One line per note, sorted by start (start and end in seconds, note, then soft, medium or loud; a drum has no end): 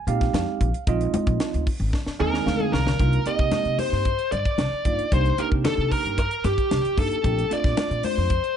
0.07 0.27 A#2 medium
0.07 0.68 G#3 medium
0.07 0.68 C4 medium
0.07 0.68 D#4 medium
0.07 0.68 G4 medium
0.07 0.83 F5 loud
0.07 closed hi-hat medium
0.07 muted conga soft
0.21 kick medium
0.21 snare soft
0.21 closed hi-hat soft
0.33 0.44 F2 medium
0.33 snare loud
0.33 closed hi-hat medium
0.33 high conga medium
0.61 0.71 A#1 medium
0.61 kick medium
0.61 closed hi-hat medium
0.74 closed hi-hat soft
0.87 1.07 A#1 loud
0.87 1.67 G#3 medium
0.87 1.67 C4 medium
0.87 1.68 D#4 medium
0.87 1.68 F4 medium
0.87 1.63 D#5 medium
0.87 kick loud
0.87 closed hi-hat medium
0.87 muted conga soft
1.01 closed hi-hat soft
1.14 muted upright bass stroke soft
1.14 closed hi-hat medium
1.14 high conga medium
1.27 1.37 A#1 loud
1.27 kick medium
1.27 closed hi-hat soft
1.40 snare loud
1.40 closed hi-hat medium
1.54 1.64 D2 medium
1.54 closed hi-hat soft
1.67 kick medium
1.67 open hi-hat medium
1.67 muted conga soft
1.80 1.90 G#1 medium
1.93 kick medium
1.93 snare medium
1.93 muted conga soft
2.06 muted upright bass stroke soft
2.06 snare medium
2.19 2.44 D#2 loud
2.19 2.79 G#3 loud
2.19 2.79 C4 medium
2.19 2.80 D#4 medium
2.19 2.80 G#4 loud
2.19 2.72 A#4 loud
2.19 2.44 G#5 medium
2.19 muted conga soft
2.19 low conga medium
2.34 snare medium
2.46 2.70 D2 medium
2.46 2.96 F5 medium
2.46 snare medium
2.46 high conga medium
2.60 high conga medium
2.73 2.97 C2 medium
2.73 3.28 A#4 loud
2.73 snare loud
2.73 low conga medium
2.87 snare medium
2.87 low conga medium
2.99 3.20 C2 loud
2.99 3.20 A#3 medium
2.99 3.20 D4 medium
2.99 3.20 D#4 medium
2.99 3.20 F4 medium
2.99 kick medium
2.99 closed hi-hat medium
2.99 muted conga soft
3.13 closed hi-hat soft
3.26 4.06 A#3 medium
3.26 4.06 C4 medium
3.26 4.06 D#4 medium
3.26 4.06 G4 medium
3.26 3.79 D#5 loud
3.26 muted upright bass stroke soft
3.26 closed hi-hat medium
3.26 muted conga soft
3.39 3.49 C3 medium
3.39 kick medium
3.39 closed hi-hat soft
3.52 muted upright bass stroke soft
3.52 snare loud
3.52 closed hi-hat medium
3.52 high conga medium
3.65 3.75 C3 medium
3.65 closed hi-hat soft
3.79 4.32 C5 medium
3.79 open hi-hat medium
3.79 muted conga soft
3.79 high conga medium
3.92 4.12 G2 medium
3.92 snare soft
4.05 kick medium
4.05 closed hi-hat medium
4.05 muted conga soft
4.19 closed hi-hat soft
4.32 4.42 G2 medium
4.32 5.13 D5 medium
4.32 closed hi-hat medium
4.45 kick medium
4.45 closed hi-hat soft
4.58 4.69 C2 medium
4.58 snare loud
4.58 closed hi-hat medium
4.58 high conga medium
4.72 muted upright bass stroke soft
4.85 4.96 G2 medium
4.85 5.05 A#3 medium
4.85 5.05 D4 soft
4.85 5.05 D#4 soft
4.85 5.06 F4 medium
4.85 kick medium
4.85 closed hi-hat medium
4.99 muted upright bass stroke soft
4.99 closed hi-hat soft
5.12 5.32 C2 loud
5.12 5.32 A#3 medium
5.12 5.32 D4 medium
5.12 5.32 D#4 medium
5.12 5.32 G4 medium
5.12 5.40 C5 loud
5.12 kick loud
5.12 closed hi-hat medium
5.12 muted conga soft
5.26 closed hi-hat soft
5.38 6.18 A#3 medium
5.38 6.18 D4 medium
5.38 6.18 D#4 medium
5.38 6.19 G4 medium
5.38 5.46 A#4 medium
5.38 closed hi-hat medium
5.38 muted conga soft
5.52 5.62 C3 medium
5.52 kick medium
5.65 5.92 A4 medium
5.65 muted upright bass stroke soft
5.65 snare loud
5.65 closed hi-hat medium
5.65 high conga medium
5.65 low conga medium
5.78 5.88 C3 medium
5.91 6.16 A#4 medium
5.91 kick medium
5.91 open hi-hat medium
5.91 muted conga soft
6.05 6.25 G2 medium
6.05 closed hi-hat soft
6.18 6.43 A#4 medium
6.18 kick medium
6.18 closed hi-hat medium
6.18 muted conga soft
6.31 closed hi-hat soft
6.44 6.55 G2 medium
6.44 6.99 G4 medium
6.44 snare soft
6.44 closed hi-hat medium
6.44 high conga medium
6.58 kick medium
6.58 closed hi-hat soft
6.71 6.82 C2 medium
6.71 snare loud
6.71 closed hi-hat medium
6.71 high conga medium
6.85 muted upright bass stroke soft
6.85 closed hi-hat soft
6.97 7.08 G2 medium
6.97 7.17 A#3 medium
6.97 7.17 D4 medium
6.97 7.18 D#4 medium
6.97 7.18 G4 medium
6.97 7.53 A4 medium
6.97 kick medium
6.97 open hi-hat medium
7.11 muted upright bass stroke soft
7.11 closed hi-hat soft
7.23 7.44 A#1 loud
7.23 7.44 A3 medium
7.23 7.44 C4 medium
7.23 7.44 D4 medium
7.23 7.44 G4 medium
7.23 kick medium
7.23 closed hi-hat medium
7.23 muted conga soft
7.39 closed hi-hat soft
7.50 8.30 A3 medium
7.50 8.30 C4 medium
7.50 8.31 D4 medium
7.50 8.31 F4 medium
7.50 8.04 D5 loud
7.50 muted upright bass stroke soft
7.50 closed hi-hat medium
7.50 muted conga soft
7.64 7.74 A#2 medium
7.64 kick medium
7.64 snare soft
7.64 closed hi-hat soft
7.77 muted upright bass stroke soft
7.77 snare medium
7.77 closed hi-hat medium
7.77 high conga medium
7.91 8.01 A#2 medium
7.91 closed hi-hat soft
8.03 8.57 C5 medium
8.03 open hi-hat medium
8.03 muted conga soft
8.03 high conga medium
8.18 8.38 F2 medium
8.30 kick medium
8.30 closed hi-hat medium
8.30 muted conga soft
8.44 closed hi-hat soft